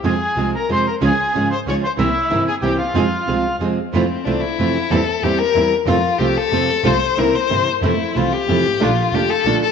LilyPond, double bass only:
\new Staff \with { instrumentName = "Double bass" } { \clef bass \time 3/4 \key f \minor \tempo 4 = 185 f,8 r8 c,8 r8 f,8 r8 | des,8 r8 aes,,8 r8 des,8 r8 | c,8 r8 g,,8 r8 c,8 r8 | f,8 r8 c,8 r8 f,8 r8 |
\key f \major f,8 r8 c,8 r8 f,8 r8 | e,8 r8 e,8 r8 e,8 r8 | f,8 r8 c,8 r8 f,8 r8 | c,8 r8 c,8 r8 g,,8 r8 |
f,8 r8 c,8 r8 f,8 aes,,8 | bes,,8 r8 f,,8 r8 bes,,8 r8 | }